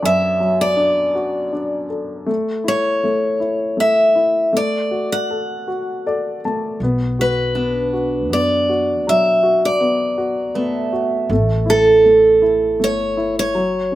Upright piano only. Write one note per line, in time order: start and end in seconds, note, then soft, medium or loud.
0.00 2.24 F#2 soft
0.00 0.40 F#3 soft
0.00 0.77 D4 soft
0.00 0.38 F#4 soft
0.00 1.13 A4 soft
0.40 1.87 F#3 soft
0.77 1.51 D4 soft
1.15 2.25 F#4 soft
1.52 2.26 D4 soft
1.90 2.27 A4 soft
2.26 3.02 A3 medium
2.64 3.39 E4 soft
3.04 3.75 A3 soft
3.40 4.14 E4 soft
3.77 4.51 A3 soft
4.15 4.52 E4 soft
4.53 6.43 A3 medium
4.91 5.66 F#4 soft
5.30 6.05 A4 soft
5.68 6.77 F#4 soft
6.06 6.79 A4 soft
6.06 6.41 D5 soft
6.45 6.80 A3 soft
6.45 6.79 A5 soft
6.83 7.54 B3 soft
7.19 7.92 F#4 soft
7.55 8.29 B3 soft
7.93 8.68 F#4 soft
8.30 9.77 B3 soft
8.69 9.42 F#4 soft
9.07 11.27 F#3 medium
9.43 10.16 F#4 soft
9.80 10.53 B3 soft
10.18 10.91 F#4 soft
10.55 11.28 B3 soft
10.93 11.29 F#4 soft
11.31 12.03 A3 medium
11.66 12.40 E4 soft
12.04 12.78 A3 soft
12.42 13.16 E4 soft
12.80 13.53 A3 soft
13.17 13.54 E4 soft
13.55 13.95 F#3 soft
13.92 13.95 C#4 soft